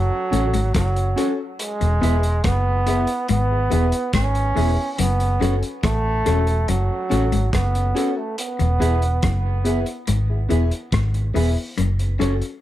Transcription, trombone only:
0.00 0.71 F#3 loud
0.76 1.29 F#3 medium
1.61 2.47 G#3 loud
2.46 3.30 B3 loud
3.30 4.11 B3 loud
4.15 4.93 C#4 loud
4.93 5.01 C#4 medium
4.99 5.57 B3 loud
5.84 6.70 A3 loud
6.69 7.53 F#3 loud
7.54 8.19 B3 medium
8.17 8.38 A3 medium
8.39 9.62 B3 medium

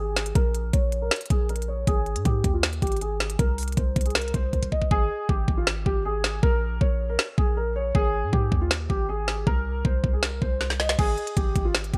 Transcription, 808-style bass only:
0.00 0.33 G#1 loud
0.35 0.72 A#1 loud
0.73 1.10 A#1 loud
1.30 1.85 A#1 loud
1.87 2.17 G#1 loud
2.16 2.25 G#2 loud
2.25 2.44 G#2 loud
2.44 2.81 D#2 loud
2.82 3.37 G#1 loud
3.39 3.76 C2 loud
3.77 3.95 C2 loud
3.96 4.33 C2 loud
4.34 4.52 C2 loud
4.53 4.71 C2 loud
4.91 5.09 G#1 loud
5.29 5.47 G#1 loud
5.48 5.84 G#1 loud
5.86 6.41 G#1 loud
6.43 6.79 A#1 loud
6.81 7.17 A#1 loud
7.38 7.93 A#1 loud
7.95 8.25 G#1 loud
8.23 8.32 G#2 loud
8.33 8.51 G#2 loud
8.52 8.88 D#2 loud
8.90 9.44 G#1 loud
9.47 9.83 C2 loud
9.85 10.03 C2 loud
10.04 10.40 C2 loud
10.42 10.96 C2 loud
10.99 11.17 G#1 loud
11.37 11.55 G#1 loud
11.56 11.92 G#1 loud
11.94 11.98 G#1 loud

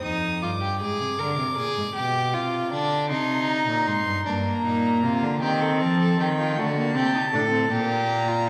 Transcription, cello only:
0.04 0.44 F2 medium
0.43 0.83 G2 medium
0.82 1.02 G#2 medium
1.01 1.20 C3 medium
1.20 1.39 D3 medium
1.39 1.58 C3 medium
1.58 1.66 A#2 medium
1.77 1.85 G#2 medium
1.96 2.35 B2 medium
2.34 2.74 C3 medium
2.72 3.12 D3 medium
3.11 3.68 C3 medium
3.68 3.89 A#2 medium
3.87 4.06 G#2 medium
4.06 4.14 G2 medium
4.25 4.62 G2 medium
4.64 5.04 A#2 medium
5.03 5.24 C3 medium
5.22 5.41 D3 medium
5.42 5.82 D#3 medium
5.81 6.18 F3 loud
6.19 6.59 D#3 medium
6.58 6.95 D3 medium
6.96 7.36 C3 medium
7.34 7.72 A2 loud
7.72 8.49 A#2 loud

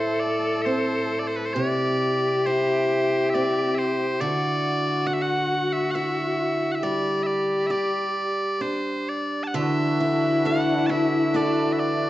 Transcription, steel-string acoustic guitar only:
0.00 1.55 A2 medium
0.00 2.46 E4 soft
0.00 1.41 A4 soft
0.66 3.34 C4 soft
1.56 4.21 C3 medium
2.46 5.06 E4 medium
3.35 4.29 C4 medium
4.21 7.71 D3 medium
5.07 6.90 F#4 medium
5.95 6.91 E4 soft
6.83 9.55 G3 medium
7.70 9.63 G4 soft
8.61 10.03 D4 soft
9.54 12.10 D3 medium
9.54 10.46 A4 medium
10.00 10.45 E4 medium
10.45 10.89 D4 medium
10.45 11.33 E4 medium
10.45 11.35 A4 medium
10.89 11.33 D4 medium
11.34 12.10 D4 medium
11.34 12.10 E4 medium
11.34 12.10 A4 medium

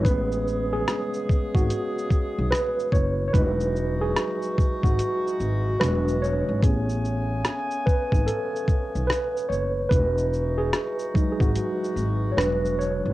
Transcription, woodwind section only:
0.02 3.16 C#3 medium
0.02 3.16 G#3 medium
0.02 3.16 B3 medium
0.02 3.16 G#4 medium
3.33 6.59 E3 medium
3.33 6.59 G#3 medium
3.33 5.78 D#4 medium
3.33 6.59 F#4 medium
5.78 6.61 D4 medium
6.62 9.74 C#3 medium
6.62 9.74 A3 medium
6.62 9.74 B3 medium
6.62 9.74 G#5 medium
9.91 13.13 E3 medium
9.91 13.13 G#3 medium
9.91 12.35 D#4 medium
9.91 13.13 F#4 medium
12.39 13.13 D4 medium

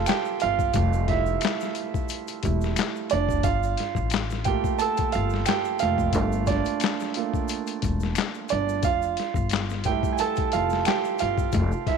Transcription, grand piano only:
0.00 0.75 G3 medium
0.00 0.76 A3 soft
0.00 0.43 F4 medium
0.00 0.09 G4 medium
0.00 3.46 A4 medium
0.00 1.09 E5 medium
0.00 0.42 F5 loud
0.00 0.07 G5 loud
0.00 3.45 A5 loud
0.07 0.39 G4 medium
0.07 0.42 G5 loud
0.42 1.05 F4 medium
0.42 1.11 F5 loud
0.75 1.72 G3 medium
0.75 1.72 A3 medium
0.75 1.73 G4 medium
1.09 2.40 E4 medium
1.09 2.39 E5 loud
2.44 2.74 G3 soft
2.44 2.74 A3 soft
2.44 2.74 E4 medium
3.11 3.43 D4 medium
3.11 3.42 D5 medium
3.44 4.42 F4 medium
3.44 4.48 F5 loud
4.45 4.92 A3 medium
4.45 4.93 A#3 medium
4.45 4.93 F4 medium
4.45 4.78 G4 medium
4.45 4.80 G5 loud
4.79 5.12 A4 medium
4.79 5.13 A5 loud
5.13 5.45 F4 medium
5.13 5.47 F5 loud
5.46 5.79 G4 medium
5.46 5.81 G5 loud
5.80 6.11 A3 medium
5.80 6.12 A#3 soft
5.80 6.15 F4 medium
5.80 6.49 F5 loud
6.15 7.12 A3 medium
6.15 7.12 A#3 soft
6.15 7.12 F4 medium
6.47 7.80 D4 medium
6.47 7.78 D5 medium
7.16 7.46 A3 medium
7.16 7.46 A#3 soft
7.16 7.46 F4 medium
8.50 8.59 D4 medium
8.50 8.58 D5 medium
8.85 9.82 F4 medium
8.85 9.88 F5 loud
9.86 10.32 G3 medium
9.86 10.32 A3 medium
9.86 10.32 E4 medium
9.86 10.12 G4 medium
9.86 10.14 G5 loud
10.13 10.18 G#5 medium
10.20 10.51 A4 loud
10.20 10.54 A5 loud
10.53 10.84 F4 medium
10.53 10.84 F5 medium
10.87 11.18 G4 medium
10.87 11.21 G5 loud
11.20 11.84 F4 medium
11.20 11.89 F5 loud
11.88 11.98 E4 medium
11.88 11.98 E5 medium

